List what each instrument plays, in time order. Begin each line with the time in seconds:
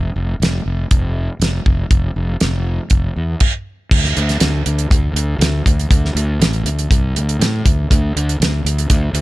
0.16 fingered electric bass F1
0.40 fingered electric bass F1, snare, closed hi-hat
0.66 fingered electric bass F1
0.91 fingered electric bass F1, kick, closed hi-hat
1.40 fingered electric bass F1, snare, closed hi-hat
1.66 fingered electric bass F1, kick
1.91 fingered electric bass F1, kick, closed hi-hat
2.16 fingered electric bass F1
2.40 fingered electric bass F1, snare, closed hi-hat
2.90 fingered electric bass F1, kick, closed hi-hat
3.16 fingered electric bass E2
3.40 kick, crash
3.91 fingered electric bass D2, kick, crash
4.05 snare
4.17 fingered electric bass D2, closed hi-hat
4.29 snare, closed hi-hat
4.40 fingered electric bass D2, snare, closed hi-hat
4.66 fingered electric bass D2, closed hi-hat
4.79 closed hi-hat
4.90 fingered electric bass D2, kick, closed hi-hat
5.13 fingered electric bass D2, closed hi-hat
5.38 fingered electric bass D2, snare, closed hi-hat
5.66 fingered electric bass D2, kick, closed hi-hat
5.79 closed hi-hat
5.90 fingered electric bass D2, kick, closed hi-hat
6.05 snare
6.15 fingered electric bass D2, closed hi-hat
6.40 fingered electric bass A1, snare, closed hi-hat
6.53 closed hi-hat
6.64 fingered electric bass D2, closed hi-hat
6.79 closed hi-hat
6.91 fingered electric bass C2, kick, closed hi-hat
7.15 fingered electric bass D2, closed hi-hat
7.29 closed hi-hat
7.39 fingered electric bass A2, snare, closed hi-hat
7.65 fingered electric bass D2, kick, closed hi-hat
7.90 fingered electric bass D2, kick, closed hi-hat
8.16 fingered electric bass D2, closed hi-hat
8.29 closed hi-hat
8.40 fingered electric bass D2, snare, closed hi-hat
8.65 fingered electric bass D2, closed hi-hat
8.78 closed hi-hat
8.90 fingered electric bass D2, kick, closed hi-hat
9.13 fingered electric bass D2, closed hi-hat